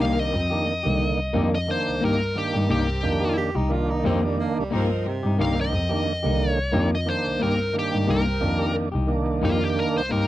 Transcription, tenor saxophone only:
3.37 G4
3.56 D#4
3.72 F4
3.90 D#4
4.06 C4
4.25 G3
4.40 A#3
4.60 G3
4.74 F3
5.07 C3

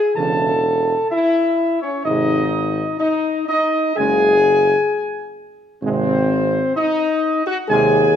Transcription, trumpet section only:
Already playing: G#5
0.16 A5
1.11 E5
1.82 C#5
2.05 D#5
3.00 D#5
3.49 D#5
3.97 G#5
5.84 C5
6.76 D#5
7.48 F#5
7.70 G#5

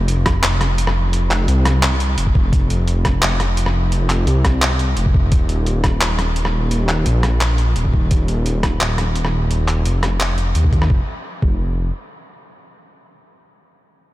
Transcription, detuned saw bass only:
Already playing: F1
0.43 F1
1.48 C2
2.18 F1
2.53 F1
3.22 F1
4.27 C2
4.97 F1
5.32 D#1
6.02 D#1
7.06 A#1
7.76 D#1
8.11 D#1
8.81 D#1
9.85 F1
10.55 D#2
10.90 F1
11.43 F1

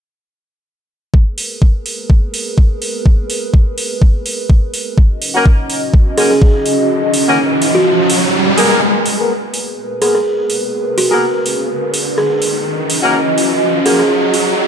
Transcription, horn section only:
5.35 A#3 C#4 F#4 A#4
6.18 A#3 C#4 F#4 A#4
7.27 A#3 C#4 F#4 A#4
8.58 A#3 B3 G#4 A#4
9.19 A#3 B3 G#4 A#4
10.02 A#3 B3 G#4 A#4
11.11 A#3 B3 G#4 A#4
13.03 A#3 C#4 F#4 A#4
13.86 A#3 C#4 F#4 A#4

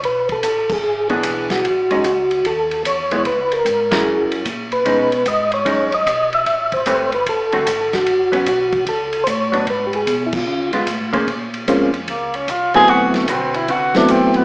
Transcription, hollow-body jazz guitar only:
1.10 E3 B3 D4 G#4
1.91 G#3 C#4 D#4
3.12 G#3 B3 E4
3.91 F#3 C#4 E4 A#4
4.85 G#3 C#4 D#4
5.65 G#3 C#4 D#4
6.87 A3 C4 G4 B4
7.53 D3 A3 C4 F#4
8.32 F#3 B3 C#4
9.52 F#3 B3 D4
10.73 G#3 B3 F4
11.13 A#3 C#4 G#4 C5
11.68 A#3 C#4 G#4 C5
12.74 D3 C4 F#4 B4
13.29 D3 C4 F#4 B4
13.69 D3 C4 F#4 B4

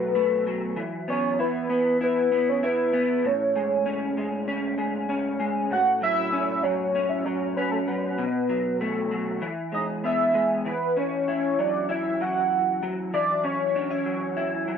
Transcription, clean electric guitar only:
Already playing: B2 F#3 A3
0.15 A3
0.47 F#3
0.76 E3
1.08 B3
1.39 E4
1.70 B3
2.01 E4
2.32 B3
2.63 E4
2.93 B3
3.24 A2
3.55 G#3
3.86 C#4
4.17 G#3
4.48 C#4
4.78 G#3
5.09 C#4
5.40 G#3
5.71 A2
6.01 F#3
6.32 C#4
6.64 F#3
6.95 C#4
7.26 F#3
7.57 C#4
7.88 F#3
8.18 B2
8.49 F#3
8.81 A3
9.11 F#3
9.42 E3
9.72 G#3
10.04 B3
10.34 G#3
10.65 E3
10.97 C#4
11.28 E4
11.59 F#3
11.89 E4
12.21 F#3
12.83 F#3
13.13 E3
13.44 C#4
13.75 D4
13.91 E4
14.06 F#3
14.37 E4
14.68 F#3

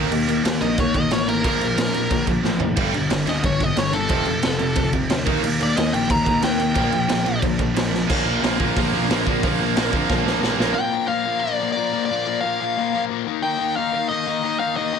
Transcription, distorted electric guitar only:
Already playing: A#3 D#4
0.10 D#3 A#3
0.27 D#3 A#3
0.44 D#3 A#3
0.61 D#3 A#3
0.78 D#3 A#3
0.95 D#3 A#3
1.11 D#3 A#3
1.28 D#3 A#3
1.44 A#2 F3 A#3
1.61 A#2 F3
1.78 A#2 F3
1.95 A#2 F3
2.11 A#2 F3
2.28 A#2 F3
2.45 A#2 F3
2.62 A#2 F3
2.77 G2 D3 G3
2.94 G2 D3
3.10 G2 D3
3.27 G2 D3
3.43 G2 D3
3.60 G2 D3
3.76 G2 D3
3.94 G2 D3
4.10 F2 C3 F3
4.27 F2 C3
4.42 F2 C3
4.59 F2 C3
4.76 F2 C3
4.93 F2 C3
5.11 F2 C3
5.26 D#3 A#3 D#4
5.43 D#3 A#3
5.60 D#3 A#3
5.76 D#3 A#3
5.94 D#3 A#3
6.10 D#3 A#3
6.27 D#3 A#3
6.43 D#3 A#3
6.59 D#3 A#3
6.76 A#2 F3 A#3
6.93 A#2 F3
7.10 A#2 F3
7.26 A#2 F3
7.43 A#2 F3
7.60 A#2 F3
7.76 A#2 F3
7.93 A#2 F3
8.10 A#2 F3 A#3
8.27 A#2 F3 A#3
8.43 A#2 F3 A#3
8.60 A#2 F3 A#3
8.76 A#2 F3 A#3
8.93 A#2 F3 A#3
9.11 A#2 F3 A#3
9.26 A#2 F3 A#3
9.44 A#2 F3 A#3
9.60 A#2 F3 A#3
9.76 A#2 F3 A#3
9.92 A#2 F3 A#3
10.09 A#2 F3 A#3
10.26 A#2 F3 A#3
10.41 A#2 F3 A#3
10.58 A#2 F3 A#3
10.75 A#2 F3 A#3
10.91 A#2 F3 A#3
11.08 A#2 F3 A#3
11.25 A#2 F3 A#3
11.43 A#2 F3 A#3
11.60 A#2 F3 A#3
11.76 A#2 F3 A#3
11.93 A#2 F3 A#3
12.09 A#2 F3 A#3
12.26 A#2 F3 A#3
12.43 A#2 F3 A#3
12.60 A#2 F3 A#3
12.77 A#2 F3 A#3
12.93 A#2 F3 A#3
13.10 A#2 F3 A#3
13.26 D#3 A#3 D#4
13.43 D#3 A#3 D#4
13.59 D#3 A#3 D#4
13.77 D#3 A#3 D#4
13.93 D#3 A#3 D#4
14.10 D#3 A#3 D#4
14.26 D#3 A#3 D#4
14.43 D#3 A#3 D#4
14.60 D#3 A#3 D#4
14.77 D#3 A#3 D#4
14.93 D#3 A#3 D#4

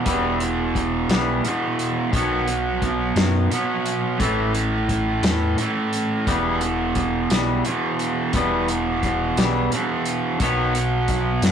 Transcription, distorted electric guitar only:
0.05 E2 B2 E3
1.43 E2 B2 E3
2.12 B2 F#3 B3
3.51 B2 F#3 B3
4.19 A2 E3 A3
5.58 A2 E3 A3
6.27 E2 B2 E3
7.65 E2 B2 E3
8.33 E2 B2 E3
9.72 E2 B2 E3
10.39 B2 F#3 B3

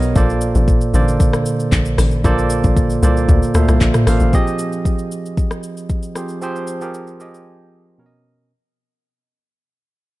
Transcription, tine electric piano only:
Already playing: B2 B3 A#4 C#5 D#5
0.15 A#2 A#3 A4 C5 D5
0.94 D3 A#3 A4 C5 D5
2.24 A#2 A#3 A4 C5 D5
3.02 A#2 A#3 A4 C5 D5
3.55 A#2 A#3 A4 C5 E5
3.63 F5
4.07 A#2 A#3 A4 C5 F5
4.33 F3 C4 G4 G#4 D#5
6.16 F3 C4 G4 G#4 C5
6.42 F3 C4 G4 G#4 C5
6.81 F3 C4 G4 G#4 A#4
7.20 F3 C4 G4 G#4 D#5
7.98 B2 B3 C#4 A#4 C#5
8.06 D#5

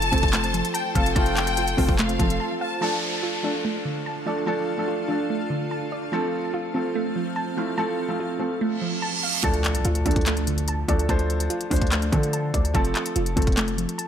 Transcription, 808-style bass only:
Already playing: F1
0.13 F1
0.23 F1
0.95 F1
1.16 F1
1.78 F1
1.89 F1
2.19 F1
9.44 D2
9.75 C2
9.85 D2
10.06 D2
10.89 D2
11.09 D2
11.71 D2
12.12 D3
12.54 D2
12.75 F1
13.16 F1
13.37 F1

